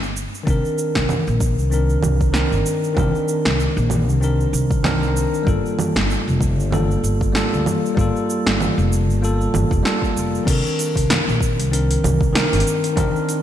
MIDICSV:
0, 0, Header, 1, 4, 480
1, 0, Start_track
1, 0, Tempo, 625000
1, 362, Time_signature, 4, 2, 24, 8
1, 10310, End_track
2, 0, Start_track
2, 0, Title_t, "Tine electric piano"
2, 0, Program_c, 0, 4
2, 334, Note_on_c, 0, 51, 96
2, 349, Note_on_c, 0, 60, 80
2, 368, Note_on_c, 0, 62, 82
2, 386, Note_on_c, 0, 70, 99
2, 505, Control_c, 0, 64, 127
2, 1283, Note_off_c, 0, 51, 0
2, 1291, Note_off_c, 0, 60, 0
2, 1300, Note_off_c, 0, 62, 0
2, 1307, Note_on_c, 0, 51, 75
2, 1309, Note_off_c, 0, 70, 0
2, 1315, Note_on_c, 0, 60, 70
2, 1324, Note_on_c, 0, 62, 67
2, 1334, Note_on_c, 0, 70, 80
2, 1769, Note_off_c, 0, 51, 0
2, 1773, Note_off_c, 0, 60, 0
2, 1778, Note_off_c, 0, 62, 0
2, 1783, Note_off_c, 0, 70, 0
2, 1783, Note_on_c, 0, 51, 99
2, 1792, Note_on_c, 0, 60, 87
2, 1799, Note_on_c, 0, 62, 90
2, 1811, Note_on_c, 0, 70, 102
2, 2240, Note_off_c, 0, 51, 0
2, 2249, Note_on_c, 0, 51, 90
2, 2252, Note_off_c, 0, 60, 0
2, 2256, Note_off_c, 0, 62, 0
2, 2262, Note_off_c, 0, 70, 0
2, 2264, Note_on_c, 0, 60, 78
2, 2283, Note_on_c, 0, 62, 80
2, 2302, Note_on_c, 0, 70, 100
2, 3200, Note_off_c, 0, 51, 0
2, 3208, Note_off_c, 0, 60, 0
2, 3218, Note_off_c, 0, 62, 0
2, 3227, Note_off_c, 0, 70, 0
2, 3231, Note_on_c, 0, 51, 75
2, 3236, Note_on_c, 0, 60, 70
2, 3249, Note_on_c, 0, 62, 72
2, 3256, Note_on_c, 0, 70, 87
2, 3691, Note_off_c, 0, 51, 0
2, 3694, Note_off_c, 0, 60, 0
2, 3700, Note_off_c, 0, 62, 0
2, 3704, Note_off_c, 0, 70, 0
2, 3707, Note_on_c, 0, 51, 97
2, 3716, Note_on_c, 0, 60, 87
2, 3723, Note_on_c, 0, 62, 93
2, 3734, Note_on_c, 0, 70, 109
2, 4169, Note_off_c, 0, 51, 0
2, 4171, Note_on_c, 0, 55, 87
2, 4174, Note_off_c, 0, 60, 0
2, 4177, Note_off_c, 0, 62, 0
2, 4183, Note_off_c, 0, 70, 0
2, 4184, Note_on_c, 0, 58, 84
2, 4203, Note_on_c, 0, 65, 86
2, 4210, Control_c, 0, 64, 0
2, 4217, Note_on_c, 0, 69, 106
2, 4346, Control_c, 0, 64, 127
2, 5121, Note_off_c, 0, 55, 0
2, 5128, Note_off_c, 0, 58, 0
2, 5137, Note_off_c, 0, 65, 0
2, 5144, Note_off_c, 0, 69, 0
2, 5148, Note_on_c, 0, 55, 78
2, 5155, Note_on_c, 0, 58, 69
2, 5161, Note_on_c, 0, 65, 67
2, 5172, Note_on_c, 0, 69, 82
2, 5610, Note_off_c, 0, 55, 0
2, 5613, Note_off_c, 0, 58, 0
2, 5617, Note_off_c, 0, 65, 0
2, 5622, Note_off_c, 0, 69, 0
2, 5624, Note_on_c, 0, 55, 92
2, 5634, Note_on_c, 0, 58, 89
2, 5645, Note_on_c, 0, 65, 86
2, 5652, Note_on_c, 0, 69, 108
2, 6088, Note_off_c, 0, 55, 0
2, 6093, Note_off_c, 0, 58, 0
2, 6098, Note_off_c, 0, 65, 0
2, 6102, Note_off_c, 0, 69, 0
2, 6102, Note_on_c, 0, 55, 88
2, 6119, Note_on_c, 0, 58, 86
2, 6136, Note_on_c, 0, 65, 83
2, 6153, Note_on_c, 0, 69, 100
2, 7047, Note_off_c, 0, 55, 0
2, 7056, Note_off_c, 0, 58, 0
2, 7064, Note_off_c, 0, 65, 0
2, 7072, Note_off_c, 0, 69, 0
2, 7076, Note_on_c, 0, 55, 73
2, 7083, Note_on_c, 0, 58, 71
2, 7088, Note_on_c, 0, 65, 69
2, 7100, Note_on_c, 0, 69, 92
2, 7534, Note_off_c, 0, 55, 0
2, 7538, Note_off_c, 0, 58, 0
2, 7540, Note_off_c, 0, 65, 0
2, 7546, Note_off_c, 0, 69, 0
2, 7547, Note_on_c, 0, 55, 93
2, 7554, Note_on_c, 0, 58, 86
2, 7565, Note_on_c, 0, 65, 86
2, 7571, Note_on_c, 0, 69, 108
2, 7670, Note_off_c, 0, 55, 0
2, 7674, Note_off_c, 0, 58, 0
2, 7679, Note_off_c, 0, 65, 0
2, 7682, Note_off_c, 0, 69, 0
2, 8015, Note_on_c, 0, 51, 95
2, 8028, Note_on_c, 0, 60, 86
2, 8048, Note_on_c, 0, 62, 81
2, 8051, Control_c, 0, 64, 0
2, 8066, Note_on_c, 0, 70, 99
2, 8182, Control_c, 0, 64, 127
2, 8963, Note_off_c, 0, 51, 0
2, 8970, Note_off_c, 0, 60, 0
2, 8980, Note_off_c, 0, 62, 0
2, 8984, Note_on_c, 0, 51, 75
2, 8989, Note_off_c, 0, 70, 0
2, 8997, Note_on_c, 0, 60, 72
2, 9007, Note_on_c, 0, 62, 68
2, 9010, Note_on_c, 0, 70, 80
2, 9448, Note_off_c, 0, 51, 0
2, 9454, Note_off_c, 0, 60, 0
2, 9459, Note_off_c, 0, 62, 0
2, 9461, Note_off_c, 0, 70, 0
2, 9467, Note_on_c, 0, 51, 102
2, 9478, Note_on_c, 0, 60, 84
2, 9488, Note_on_c, 0, 62, 92
2, 9496, Note_on_c, 0, 70, 113
2, 9923, Note_off_c, 0, 51, 0
2, 9932, Note_on_c, 0, 51, 94
2, 9935, Note_off_c, 0, 60, 0
2, 9940, Note_off_c, 0, 62, 0
2, 9944, Note_off_c, 0, 70, 0
2, 9950, Note_on_c, 0, 60, 90
2, 9967, Note_on_c, 0, 62, 92
2, 9982, Note_on_c, 0, 70, 112
2, 10310, Note_off_c, 0, 51, 0
2, 10310, Note_off_c, 0, 60, 0
2, 10310, Note_off_c, 0, 62, 0
2, 10310, Note_off_c, 0, 70, 0
2, 10310, End_track
3, 0, Start_track
3, 0, Title_t, "Upright bass"
3, 0, Program_c, 1, 32
3, 0, Note_on_c, 1, 31, 78
3, 182, Note_off_c, 1, 31, 0
3, 360, Note_on_c, 1, 36, 86
3, 450, Note_off_c, 1, 36, 0
3, 737, Note_on_c, 1, 36, 67
3, 884, Note_off_c, 1, 36, 0
3, 978, Note_on_c, 1, 34, 93
3, 1214, Note_off_c, 1, 34, 0
3, 1214, Note_on_c, 1, 36, 95
3, 1502, Note_off_c, 1, 36, 0
3, 1560, Note_on_c, 1, 36, 83
3, 1862, Note_off_c, 1, 36, 0
3, 1933, Note_on_c, 1, 31, 87
3, 2003, Note_off_c, 1, 31, 0
3, 2279, Note_on_c, 1, 36, 92
3, 2369, Note_off_c, 1, 36, 0
3, 2654, Note_on_c, 1, 36, 68
3, 2802, Note_off_c, 1, 36, 0
3, 2893, Note_on_c, 1, 34, 99
3, 3134, Note_off_c, 1, 34, 0
3, 3134, Note_on_c, 1, 36, 88
3, 3423, Note_off_c, 1, 36, 0
3, 3478, Note_on_c, 1, 36, 88
3, 4021, Note_off_c, 1, 36, 0
3, 4199, Note_on_c, 1, 31, 87
3, 4289, Note_off_c, 1, 31, 0
3, 4575, Note_on_c, 1, 31, 72
3, 4723, Note_off_c, 1, 31, 0
3, 4819, Note_on_c, 1, 29, 96
3, 5058, Note_off_c, 1, 29, 0
3, 5058, Note_on_c, 1, 31, 98
3, 5345, Note_off_c, 1, 31, 0
3, 5403, Note_on_c, 1, 31, 79
3, 5703, Note_off_c, 1, 31, 0
3, 5785, Note_on_c, 1, 38, 88
3, 5849, Note_off_c, 1, 38, 0
3, 6122, Note_on_c, 1, 31, 95
3, 6211, Note_off_c, 1, 31, 0
3, 6501, Note_on_c, 1, 31, 75
3, 6646, Note_off_c, 1, 31, 0
3, 6741, Note_on_c, 1, 29, 97
3, 6982, Note_off_c, 1, 29, 0
3, 6982, Note_on_c, 1, 31, 93
3, 7266, Note_off_c, 1, 31, 0
3, 7328, Note_on_c, 1, 31, 99
3, 7414, Note_off_c, 1, 31, 0
3, 7459, Note_on_c, 1, 29, 97
3, 7527, Note_off_c, 1, 29, 0
3, 7803, Note_on_c, 1, 29, 81
3, 7971, Note_off_c, 1, 29, 0
3, 8038, Note_on_c, 1, 36, 91
3, 8129, Note_off_c, 1, 36, 0
3, 8416, Note_on_c, 1, 36, 80
3, 8563, Note_off_c, 1, 36, 0
3, 8659, Note_on_c, 1, 34, 91
3, 8900, Note_off_c, 1, 34, 0
3, 8900, Note_on_c, 1, 36, 93
3, 9186, Note_off_c, 1, 36, 0
3, 9245, Note_on_c, 1, 36, 81
3, 9544, Note_off_c, 1, 36, 0
3, 9622, Note_on_c, 1, 31, 90
3, 9688, Note_off_c, 1, 31, 0
3, 9961, Note_on_c, 1, 36, 87
3, 10050, Note_off_c, 1, 36, 0
3, 10310, End_track
4, 0, Start_track
4, 0, Title_t, "Drums"
4, 24, Note_on_c, 9, 69, 21
4, 101, Note_off_c, 9, 69, 0
4, 126, Note_on_c, 9, 69, 70
4, 203, Note_off_c, 9, 69, 0
4, 266, Note_on_c, 9, 69, 30
4, 343, Note_off_c, 9, 69, 0
4, 360, Note_on_c, 9, 36, 112
4, 365, Note_on_c, 9, 69, 42
4, 437, Note_off_c, 9, 36, 0
4, 442, Note_off_c, 9, 69, 0
4, 499, Note_on_c, 9, 69, 22
4, 576, Note_off_c, 9, 69, 0
4, 600, Note_on_c, 9, 69, 71
4, 677, Note_off_c, 9, 69, 0
4, 732, Note_on_c, 9, 38, 70
4, 736, Note_on_c, 9, 36, 57
4, 739, Note_on_c, 9, 69, 29
4, 809, Note_off_c, 9, 38, 0
4, 812, Note_off_c, 9, 36, 0
4, 816, Note_off_c, 9, 69, 0
4, 837, Note_on_c, 9, 64, 69
4, 844, Note_on_c, 9, 69, 40
4, 914, Note_off_c, 9, 64, 0
4, 921, Note_off_c, 9, 69, 0
4, 978, Note_on_c, 9, 69, 21
4, 1054, Note_off_c, 9, 69, 0
4, 1079, Note_on_c, 9, 36, 91
4, 1080, Note_on_c, 9, 69, 68
4, 1156, Note_off_c, 9, 36, 0
4, 1157, Note_off_c, 9, 69, 0
4, 1219, Note_on_c, 9, 69, 30
4, 1296, Note_off_c, 9, 69, 0
4, 1321, Note_on_c, 9, 69, 44
4, 1398, Note_off_c, 9, 69, 0
4, 1456, Note_on_c, 9, 69, 21
4, 1533, Note_off_c, 9, 69, 0
4, 1556, Note_on_c, 9, 64, 79
4, 1562, Note_on_c, 9, 69, 77
4, 1632, Note_off_c, 9, 64, 0
4, 1639, Note_off_c, 9, 69, 0
4, 1694, Note_on_c, 9, 36, 94
4, 1696, Note_on_c, 9, 69, 31
4, 1771, Note_off_c, 9, 36, 0
4, 1773, Note_off_c, 9, 69, 0
4, 1795, Note_on_c, 9, 38, 67
4, 1802, Note_on_c, 9, 69, 45
4, 1872, Note_off_c, 9, 38, 0
4, 1879, Note_off_c, 9, 69, 0
4, 1938, Note_on_c, 9, 69, 21
4, 2014, Note_off_c, 9, 69, 0
4, 2043, Note_on_c, 9, 69, 70
4, 2120, Note_off_c, 9, 69, 0
4, 2180, Note_on_c, 9, 69, 30
4, 2257, Note_off_c, 9, 69, 0
4, 2279, Note_on_c, 9, 36, 116
4, 2280, Note_on_c, 9, 64, 78
4, 2287, Note_on_c, 9, 69, 39
4, 2355, Note_off_c, 9, 36, 0
4, 2357, Note_off_c, 9, 64, 0
4, 2364, Note_off_c, 9, 69, 0
4, 2421, Note_on_c, 9, 69, 22
4, 2498, Note_off_c, 9, 69, 0
4, 2520, Note_on_c, 9, 69, 69
4, 2597, Note_off_c, 9, 69, 0
4, 2653, Note_on_c, 9, 38, 68
4, 2660, Note_on_c, 9, 69, 30
4, 2729, Note_off_c, 9, 38, 0
4, 2736, Note_off_c, 9, 69, 0
4, 2763, Note_on_c, 9, 69, 39
4, 2840, Note_off_c, 9, 69, 0
4, 2898, Note_on_c, 9, 69, 21
4, 2974, Note_off_c, 9, 69, 0
4, 2995, Note_on_c, 9, 64, 75
4, 3002, Note_on_c, 9, 69, 69
4, 3072, Note_off_c, 9, 64, 0
4, 3079, Note_off_c, 9, 69, 0
4, 3143, Note_on_c, 9, 69, 31
4, 3219, Note_off_c, 9, 69, 0
4, 3246, Note_on_c, 9, 69, 42
4, 3323, Note_off_c, 9, 69, 0
4, 3383, Note_on_c, 9, 69, 23
4, 3460, Note_off_c, 9, 69, 0
4, 3485, Note_on_c, 9, 69, 72
4, 3562, Note_off_c, 9, 69, 0
4, 3614, Note_on_c, 9, 36, 96
4, 3619, Note_on_c, 9, 69, 31
4, 3691, Note_off_c, 9, 36, 0
4, 3696, Note_off_c, 9, 69, 0
4, 3719, Note_on_c, 9, 38, 71
4, 3719, Note_on_c, 9, 64, 83
4, 3725, Note_on_c, 9, 69, 41
4, 3795, Note_off_c, 9, 38, 0
4, 3795, Note_off_c, 9, 64, 0
4, 3802, Note_off_c, 9, 69, 0
4, 3862, Note_on_c, 9, 69, 20
4, 3939, Note_off_c, 9, 69, 0
4, 3968, Note_on_c, 9, 69, 74
4, 4044, Note_off_c, 9, 69, 0
4, 4103, Note_on_c, 9, 69, 31
4, 4180, Note_off_c, 9, 69, 0
4, 4199, Note_on_c, 9, 36, 103
4, 4208, Note_on_c, 9, 69, 38
4, 4276, Note_off_c, 9, 36, 0
4, 4285, Note_off_c, 9, 69, 0
4, 4345, Note_on_c, 9, 69, 21
4, 4422, Note_off_c, 9, 69, 0
4, 4444, Note_on_c, 9, 64, 82
4, 4451, Note_on_c, 9, 69, 69
4, 4521, Note_off_c, 9, 64, 0
4, 4528, Note_off_c, 9, 69, 0
4, 4575, Note_on_c, 9, 36, 51
4, 4578, Note_on_c, 9, 38, 74
4, 4585, Note_on_c, 9, 69, 30
4, 4652, Note_off_c, 9, 36, 0
4, 4655, Note_off_c, 9, 38, 0
4, 4662, Note_off_c, 9, 69, 0
4, 4687, Note_on_c, 9, 69, 38
4, 4764, Note_off_c, 9, 69, 0
4, 4827, Note_on_c, 9, 69, 19
4, 4904, Note_off_c, 9, 69, 0
4, 4920, Note_on_c, 9, 36, 93
4, 4928, Note_on_c, 9, 69, 68
4, 4996, Note_off_c, 9, 36, 0
4, 5005, Note_off_c, 9, 69, 0
4, 5069, Note_on_c, 9, 69, 31
4, 5145, Note_off_c, 9, 69, 0
4, 5164, Note_on_c, 9, 64, 77
4, 5171, Note_on_c, 9, 69, 41
4, 5241, Note_off_c, 9, 64, 0
4, 5248, Note_off_c, 9, 69, 0
4, 5307, Note_on_c, 9, 69, 22
4, 5384, Note_off_c, 9, 69, 0
4, 5407, Note_on_c, 9, 69, 72
4, 5484, Note_off_c, 9, 69, 0
4, 5537, Note_on_c, 9, 36, 92
4, 5548, Note_on_c, 9, 69, 31
4, 5614, Note_off_c, 9, 36, 0
4, 5625, Note_off_c, 9, 69, 0
4, 5645, Note_on_c, 9, 38, 74
4, 5652, Note_on_c, 9, 69, 42
4, 5721, Note_off_c, 9, 38, 0
4, 5728, Note_off_c, 9, 69, 0
4, 5788, Note_on_c, 9, 69, 20
4, 5865, Note_off_c, 9, 69, 0
4, 5885, Note_on_c, 9, 64, 78
4, 5892, Note_on_c, 9, 69, 66
4, 5962, Note_off_c, 9, 64, 0
4, 5969, Note_off_c, 9, 69, 0
4, 6035, Note_on_c, 9, 69, 31
4, 6111, Note_off_c, 9, 69, 0
4, 6122, Note_on_c, 9, 36, 118
4, 6134, Note_on_c, 9, 69, 41
4, 6199, Note_off_c, 9, 36, 0
4, 6211, Note_off_c, 9, 69, 0
4, 6270, Note_on_c, 9, 69, 21
4, 6347, Note_off_c, 9, 69, 0
4, 6373, Note_on_c, 9, 69, 75
4, 6450, Note_off_c, 9, 69, 0
4, 6502, Note_on_c, 9, 38, 76
4, 6508, Note_on_c, 9, 69, 29
4, 6578, Note_off_c, 9, 38, 0
4, 6585, Note_off_c, 9, 69, 0
4, 6609, Note_on_c, 9, 64, 76
4, 6616, Note_on_c, 9, 69, 42
4, 6686, Note_off_c, 9, 64, 0
4, 6693, Note_off_c, 9, 69, 0
4, 6749, Note_on_c, 9, 69, 22
4, 6826, Note_off_c, 9, 69, 0
4, 6855, Note_on_c, 9, 69, 69
4, 6932, Note_off_c, 9, 69, 0
4, 6990, Note_on_c, 9, 69, 29
4, 7067, Note_off_c, 9, 69, 0
4, 7095, Note_on_c, 9, 69, 41
4, 7172, Note_off_c, 9, 69, 0
4, 7228, Note_on_c, 9, 69, 22
4, 7305, Note_off_c, 9, 69, 0
4, 7326, Note_on_c, 9, 64, 77
4, 7333, Note_on_c, 9, 69, 75
4, 7403, Note_off_c, 9, 64, 0
4, 7410, Note_off_c, 9, 69, 0
4, 7457, Note_on_c, 9, 36, 99
4, 7467, Note_on_c, 9, 69, 31
4, 7534, Note_off_c, 9, 36, 0
4, 7544, Note_off_c, 9, 69, 0
4, 7567, Note_on_c, 9, 38, 81
4, 7574, Note_on_c, 9, 69, 43
4, 7644, Note_off_c, 9, 38, 0
4, 7651, Note_off_c, 9, 69, 0
4, 7696, Note_on_c, 9, 36, 58
4, 7713, Note_on_c, 9, 69, 21
4, 7773, Note_off_c, 9, 36, 0
4, 7790, Note_off_c, 9, 69, 0
4, 7810, Note_on_c, 9, 69, 72
4, 7887, Note_off_c, 9, 69, 0
4, 7948, Note_on_c, 9, 69, 29
4, 8025, Note_off_c, 9, 69, 0
4, 8040, Note_on_c, 9, 36, 115
4, 8046, Note_on_c, 9, 46, 54
4, 8046, Note_on_c, 9, 49, 97
4, 8053, Note_on_c, 9, 69, 44
4, 8117, Note_off_c, 9, 36, 0
4, 8123, Note_off_c, 9, 46, 0
4, 8123, Note_off_c, 9, 49, 0
4, 8130, Note_off_c, 9, 69, 0
4, 8190, Note_on_c, 9, 69, 23
4, 8267, Note_off_c, 9, 69, 0
4, 8287, Note_on_c, 9, 46, 33
4, 8294, Note_on_c, 9, 69, 77
4, 8364, Note_off_c, 9, 46, 0
4, 8371, Note_off_c, 9, 69, 0
4, 8415, Note_on_c, 9, 36, 57
4, 8425, Note_on_c, 9, 46, 47
4, 8432, Note_on_c, 9, 69, 32
4, 8492, Note_off_c, 9, 36, 0
4, 8502, Note_off_c, 9, 46, 0
4, 8509, Note_off_c, 9, 69, 0
4, 8526, Note_on_c, 9, 38, 99
4, 8526, Note_on_c, 9, 46, 55
4, 8526, Note_on_c, 9, 64, 76
4, 8533, Note_on_c, 9, 69, 43
4, 8603, Note_off_c, 9, 38, 0
4, 8603, Note_off_c, 9, 46, 0
4, 8603, Note_off_c, 9, 64, 0
4, 8610, Note_off_c, 9, 69, 0
4, 8670, Note_on_c, 9, 69, 23
4, 8746, Note_off_c, 9, 69, 0
4, 8759, Note_on_c, 9, 36, 97
4, 8773, Note_on_c, 9, 69, 74
4, 8836, Note_off_c, 9, 36, 0
4, 8849, Note_off_c, 9, 69, 0
4, 8905, Note_on_c, 9, 46, 47
4, 8912, Note_on_c, 9, 69, 32
4, 8982, Note_off_c, 9, 46, 0
4, 8989, Note_off_c, 9, 69, 0
4, 9011, Note_on_c, 9, 46, 55
4, 9018, Note_on_c, 9, 69, 44
4, 9088, Note_off_c, 9, 46, 0
4, 9095, Note_off_c, 9, 69, 0
4, 9144, Note_on_c, 9, 46, 47
4, 9151, Note_on_c, 9, 69, 23
4, 9221, Note_off_c, 9, 46, 0
4, 9228, Note_off_c, 9, 69, 0
4, 9249, Note_on_c, 9, 46, 32
4, 9249, Note_on_c, 9, 64, 82
4, 9256, Note_on_c, 9, 69, 79
4, 9326, Note_off_c, 9, 46, 0
4, 9326, Note_off_c, 9, 64, 0
4, 9333, Note_off_c, 9, 69, 0
4, 9375, Note_on_c, 9, 36, 99
4, 9393, Note_on_c, 9, 69, 34
4, 9451, Note_off_c, 9, 36, 0
4, 9470, Note_off_c, 9, 69, 0
4, 9488, Note_on_c, 9, 38, 105
4, 9488, Note_on_c, 9, 46, 57
4, 9495, Note_on_c, 9, 69, 43
4, 9565, Note_off_c, 9, 38, 0
4, 9565, Note_off_c, 9, 46, 0
4, 9572, Note_off_c, 9, 69, 0
4, 9624, Note_on_c, 9, 46, 43
4, 9631, Note_on_c, 9, 69, 23
4, 9678, Note_off_c, 9, 46, 0
4, 9678, Note_on_c, 9, 46, 58
4, 9708, Note_off_c, 9, 69, 0
4, 9732, Note_on_c, 9, 69, 75
4, 9755, Note_off_c, 9, 46, 0
4, 9809, Note_off_c, 9, 69, 0
4, 9861, Note_on_c, 9, 46, 45
4, 9868, Note_on_c, 9, 69, 31
4, 9938, Note_off_c, 9, 46, 0
4, 9945, Note_off_c, 9, 69, 0
4, 9960, Note_on_c, 9, 36, 123
4, 9962, Note_on_c, 9, 46, 57
4, 9962, Note_on_c, 9, 64, 78
4, 9969, Note_on_c, 9, 69, 48
4, 10036, Note_off_c, 9, 36, 0
4, 10039, Note_off_c, 9, 46, 0
4, 10039, Note_off_c, 9, 64, 0
4, 10046, Note_off_c, 9, 69, 0
4, 10107, Note_on_c, 9, 69, 25
4, 10184, Note_off_c, 9, 69, 0
4, 10204, Note_on_c, 9, 46, 32
4, 10211, Note_on_c, 9, 69, 85
4, 10281, Note_off_c, 9, 46, 0
4, 10288, Note_off_c, 9, 69, 0
4, 10310, End_track
0, 0, End_of_file